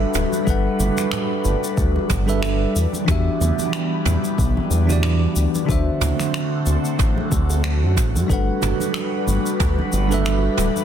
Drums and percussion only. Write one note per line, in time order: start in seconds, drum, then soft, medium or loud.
0.14 mid tom medium
0.14 shaker medium
0.32 high conga medium
0.32 shaker medium
0.47 kick loud
0.47 shaker medium
0.80 low conga loud
0.80 shaker medium
0.97 finger snap soft
0.97 high conga medium
0.97 shaker medium
1.11 finger snap loud
1.11 mid tom medium
1.11 shaker medium
1.45 low conga medium
1.45 shaker medium
1.64 shaker medium
1.77 kick loud
1.77 shaker medium
1.96 high bongo soft
1.96 high conga medium
2.10 kick loud
2.10 mid tom medium
2.10 shaker medium
2.28 high bongo medium
2.28 shaker medium
2.43 finger snap loud
2.43 high conga medium
2.43 shaker medium
2.76 shaker medium
2.93 high bongo soft
2.93 high conga loud
2.93 shaker medium
3.08 kick loud
3.08 mid tom medium
3.08 shaker medium
3.41 low conga medium
3.41 shaker medium
3.59 high conga loud
3.59 shaker medium
3.73 finger snap loud
3.73 shaker soft
4.05 mid tom medium
4.05 high conga medium
4.05 low conga medium
4.05 shaker medium
4.24 shaker medium
4.38 kick loud
4.38 shaker soft
4.57 high bongo soft
4.57 high conga medium
4.71 shaker loud
4.89 low conga loud
4.89 shaker medium
5.03 finger snap loud
5.03 mid tom medium
5.03 high conga medium
5.03 shaker soft
5.36 shaker loud
5.55 high conga loud
5.55 shaker medium
5.69 kick loud
5.69 shaker soft
6.01 mid tom medium
6.01 low conga loud
6.01 shaker medium
6.20 finger snap soft
6.20 high conga loud
6.20 shaker medium
6.34 finger snap loud
6.34 shaker medium
6.66 low conga medium
6.66 shaker medium
6.85 shaker medium
6.99 kick loud
6.99 mid tom medium
6.99 shaker medium
7.17 high bongo soft
7.17 high conga loud
7.32 kick loud
7.32 shaker medium
7.50 high bongo medium
7.50 shaker medium
7.64 finger snap loud
7.64 high conga medium
7.64 shaker soft
7.97 kick medium
7.97 mid tom medium
7.97 shaker medium
8.15 high bongo soft
8.15 high conga loud
8.15 shaker medium
8.29 kick loud
8.29 shaker medium
8.62 mid tom medium
8.62 low conga medium
8.62 shaker medium
8.80 high conga loud
8.80 shaker medium
8.94 finger snap loud
8.94 shaker soft
9.27 high conga medium
9.27 low conga medium
9.27 shaker medium
9.46 shaker medium
9.60 kick loud
9.60 mid tom medium
9.60 shaker soft
9.78 high bongo soft
9.78 high conga medium
9.92 shaker medium
10.11 low conga loud
10.11 shaker medium
10.25 finger snap medium
10.25 high conga medium
10.25 shaker soft
10.57 mid tom medium
10.57 shaker loud
10.76 high conga medium
10.76 shaker medium